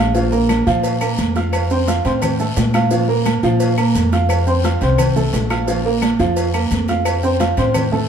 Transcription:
Already playing: A#1 F4 F5
0.00 F6
0.15 F3 F4 F5, cowbell, long guiro, maracas
0.32 A#3 A#4 A#5, maracas
0.49 cowbell, high conga, low agogo, short guiro, claves, maracas
0.67 A#2 F3 F4 F5, short guiro, maracas
0.83 cowbell, high conga, low agogo, long guiro, maracas
1.01 A#3 A#4 A#5, high conga, low agogo, claves, maracas
1.18 F2, cowbell, high conga, low agogo, short guiro, maracas
1.35 F4 F5 F6, high conga, low agogo, short guiro, maracas
1.53 cowbell, high conga, low agogo, long guiro, claves, maracas
1.70 C4 C5 C6, high conga, maracas
1.87 F4 F5 F6, cowbell, high conga, low agogo, short guiro, maracas
2.05 A2 C4 C5 C6, cowbell, high conga, low agogo, short guiro, maracas
2.22 cowbell, high conga, low conga, low agogo, long guiro, claves, maracas
2.39 A3 A4 A5, high conga, maracas
2.56 A#2, cowbell, high conga, low timbale, low agogo, short guiro, maracas
2.74 F4 F5 F6, cowbell, high conga, low agogo, short guiro, claves, maracas
2.91 F3 F4 F5, cowbell, high conga, long guiro, maracas
3.08 A#3 A#4 A#5
3.25 cowbell, high conga, low agogo, short guiro, claves, maracas
3.43 A#2 F3 F4 F5, high conga, short guiro, maracas
3.60 cowbell, low agogo, long guiro, maracas
3.78 A#3 A#4 A#5, high conga, low agogo, claves, maracas
3.95 F2, cowbell, high conga, low agogo, short guiro, maracas
4.12 F4 F5 F6, high conga, low agogo, short guiro, maracas
4.29 cowbell, high conga, low agogo, long guiro, claves, maracas
4.47 C4 C5 C6, high conga, maracas
4.64 F4 F5 F6, cowbell, high conga, low agogo, short guiro, maracas
4.81 C2 C4 C5 C6, cowbell, high conga, low agogo, short guiro, maracas
4.98 cowbell, high conga, low conga, low agogo, long guiro, claves, maracas
5.16 A3 A4 A5, high conga, low conga, maracas
5.33 A#1, cowbell, high conga, low timbale, low agogo, short guiro, maracas
5.50 F4 F5 F6, cowbell, low agogo, short guiro, claves, maracas
5.67 F3 F4 F5, cowbell, high conga, long guiro, maracas
5.85 A#3 A#4 A#5, high conga
6.02 cowbell, high conga, low agogo, short guiro, claves, maracas
6.19 F2 F3 F4 F5, short guiro, maracas
6.36 cowbell, high conga, low agogo, long guiro, maracas
6.54 A#3 A#4 A#5, high conga, low agogo, claves, maracas
6.71 F2, cowbell, high conga, low agogo, short guiro, maracas
6.88 F4 F5 F6, high conga, low agogo, short guiro, maracas
7.05 cowbell, high conga, low agogo, long guiro, claves, maracas
7.23 C4 C5 C6, high conga, maracas
7.40 F4 F5 F6, cowbell, high conga, low agogo, short guiro, maracas
7.57 A2 C4 C5 C6, cowbell, high conga, low agogo, short guiro, maracas
7.74 cowbell, high conga, low conga, low agogo, long guiro, claves, maracas
7.92 A3 A4 A5, high conga, low conga

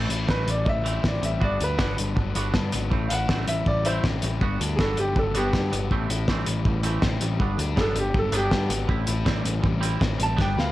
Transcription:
Already playing: A2
0.09 A1 E3 A3 E4, closed hi-hat
0.27 A1 E3 G3 A3 C4 B4, kick, snare
0.46 A1 E3 A3, closed hi-hat
0.50 D5
0.65 A1 E3 G3 A3 D#5, kick
0.69 E5
0.84 E3 A3 C4 E4, closed hi-hat
1.03 A1 E3 A3 C4, kick, snare
1.08 D5
1.21 A1 E3 G3 A3 E5, closed hi-hat
1.40 G1 G2 B3 D4 F#4 D5, kick
1.59 D2 B3 D4, closed hi-hat
1.64 B4
1.78 G1 F#3 B3 D4 F#4, kick, snare
1.97 G1 D3 B3 D4, closed hi-hat
2.16 G1 F#3 B3 D4, kick
2.35 G1 B3 D4 F#4, closed hi-hat
2.54 G2 B3 D4, kick, snare
2.72 G#1 F#3 B3 D4, closed hi-hat
2.90 A1 A2 E3 A3 C4, kick
3.08 A1 E3 A3 E4 F5, closed hi-hat
3.13 F#5
3.28 A1 E3 G3 A3 C4, kick, snare
3.47 A1 E3 A3 E5, closed hi-hat
3.66 A1 E3 G3 A3 D5, kick
3.85 E3 A3 C4 E4 C5, closed hi-hat
4.04 A1 E3 A3 C4, kick, snare
4.22 A1 E3 G3 A3, closed hi-hat
4.41 G1 G2 B3 D4 F#4, kick
4.60 D2 B3 D4, closed hi-hat
4.76 G1 B3 G#4, kick, snare
4.80 F#3 D4 F#4 A4
4.97 G1 D3 B3 D4 G4, closed hi-hat
5.16 G1 F#3 B3 D4 A4, kick
5.34 G1 B3 D4 F#4 G4, closed hi-hat
5.53 G2 B3 D4, kick, snare
5.72 G1 F#3 B3 D4, closed hi-hat
5.91 A1 A2 E3 A3 C4, kick
6.10 A1 E3 A3 E4, closed hi-hat
6.28 A1 E3 G3 A3 C4, kick, snare
6.46 A1 E3 A3, closed hi-hat
6.65 A1 E3 G3 A3, kick
6.83 E3 A3 C4 E4, closed hi-hat
7.02 A1 E3 A3 C4, kick, snare
7.21 A1 E3 G3 A3, closed hi-hat
7.40 G1 G2 F#3 B3 D4, kick
7.57 D2 F#3 B3 D4, closed hi-hat
7.76 G1 F#3 B3 D4 G#4, kick, snare
7.81 A4
7.95 G1 D3 F#3 B3, closed hi-hat
7.99 G4
8.14 G1 F#3 B3, kick
8.19 A4
8.32 G1 F#3 B3 D4, closed hi-hat
8.36 G4
8.51 G2 F#3 B3, kick, snare
8.69 G#1 F#3 B3, closed hi-hat
8.88 A1 A2 G3 C4 E4, kick
9.07 A1 G3 C4 E4, closed hi-hat
9.25 A1 G3 C4 E4, kick, snare
9.44 A1 E3 G3 C4, closed hi-hat
9.62 A1 G3 C4, kick
9.81 G3 C4 E4, closed hi-hat
10.00 A1 G3 C4, kick, snare
10.18 A1 G3 C4, closed hi-hat
10.23 A5
10.36 G1 G3 B3 D4, kick, snare
10.41 G5
10.56 D2 G3 B3 B4 F5, snare

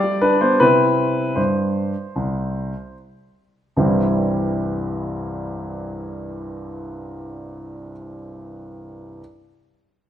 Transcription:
Already playing: D5
0.04 G3
0.21 D4 B4
0.41 B3 C5
0.60 C3 C4 E4 B4
1.36 G2 C5
2.16 C2
3.77 C2 G2 E3 G3 C4 E4

